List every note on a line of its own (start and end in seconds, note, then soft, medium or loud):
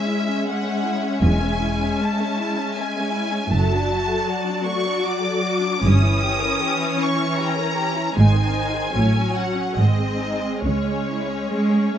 0.00 3.48 G#3 soft
0.00 3.48 C#4 soft
0.00 0.44 E5 medium
0.00 4.24 E5 soft
0.09 0.28 E4 soft
0.29 0.47 C#4 soft
0.47 0.67 G#3 soft
0.47 1.23 F#5 soft
0.66 0.85 C#4 soft
0.85 1.04 E4 soft
1.04 1.23 C#4 soft
1.21 1.84 E1 medium
1.21 1.84 E2 medium
1.21 1.41 G#3 soft
1.21 1.98 G#5 medium
1.43 1.62 C#4 soft
1.62 1.81 E4 soft
1.83 2.01 C#4 soft
1.99 2.20 G#3 soft
1.99 2.76 A5 medium
2.21 2.39 C#4 soft
2.40 2.58 E4 soft
2.61 2.78 C#4 soft
2.76 2.97 G#3 soft
2.76 3.52 G#5 medium
2.99 3.16 C#4 soft
3.15 3.34 E4 soft
3.32 3.52 C#4 soft
3.51 4.13 F#1 medium
3.51 4.14 F#2 medium
3.51 5.80 F#3 soft
3.51 3.70 A3 soft
3.51 5.80 F#4 soft
3.51 4.68 A5 medium
3.72 3.91 D4 soft
3.92 4.10 F#4 soft
4.10 4.29 A4 soft
4.29 4.48 F#4 soft
4.29 5.85 D5 soft
4.48 4.68 D4 soft
4.67 4.87 A3 soft
4.67 5.05 C#6 medium
4.87 5.06 D4 soft
5.05 5.25 F#4 soft
5.05 5.84 D6 medium
5.24 5.44 A4 soft
5.44 5.64 F#4 soft
5.62 5.83 D4 soft
5.83 6.47 G1 medium
5.83 6.47 G2 medium
5.83 8.18 E3 medium
5.83 6.02 C#4 soft
5.83 8.18 C#4 medium
5.83 8.17 C#5 soft
5.83 7.01 D#6 medium
6.02 6.23 E4 soft
6.22 6.42 G4 soft
6.41 6.62 A#4 soft
6.61 6.81 G4 soft
6.80 7.00 E4 soft
6.99 7.20 C#4 soft
6.99 7.40 C#6 medium
7.17 7.38 E4 soft
7.38 7.58 G4 soft
7.38 8.18 A#5 medium
7.57 7.78 A#4 soft
7.76 7.97 G4 soft
7.96 8.17 E4 soft
8.14 8.81 G#1 medium
8.14 8.95 D#3 soft
8.14 8.34 G#3 soft
8.14 8.96 D#4 soft
8.14 8.93 C5 soft
8.14 9.34 G#5 medium
8.18 8.81 G#2 medium
8.35 8.56 C4 soft
8.53 8.75 D#4 soft
8.74 8.95 G#4 soft
8.94 9.62 A1 soft
8.94 9.62 A2 soft
8.94 9.76 F#3 soft
8.94 9.14 A3 soft
8.94 9.76 C#4 soft
8.94 9.77 C#5 soft
9.14 9.35 C#4 soft
9.32 9.55 F#4 soft
9.37 9.79 F#5 medium
9.56 9.77 C#4 soft
9.76 10.47 G#1 soft
9.76 10.48 G#2 soft
9.76 9.97 G#3 soft
9.76 11.98 G#3 soft
9.76 10.64 C4 soft
9.76 11.98 G#4 soft
9.76 10.65 D#5 soft
9.98 10.20 C4 soft
10.20 10.42 D#4 soft
10.42 10.64 C4 soft
10.64 11.34 C#2 soft
10.64 11.35 C#3 soft
10.64 10.85 G#3 soft
10.64 11.98 C#4 soft
10.64 11.98 C#5 soft
10.85 11.07 C#4 soft
11.09 11.30 E4 soft
11.30 11.52 C#4 soft
11.51 11.73 G#3 soft
11.51 11.92 G#3 soft
11.75 11.96 C#4 soft
11.95 11.98 A3 soft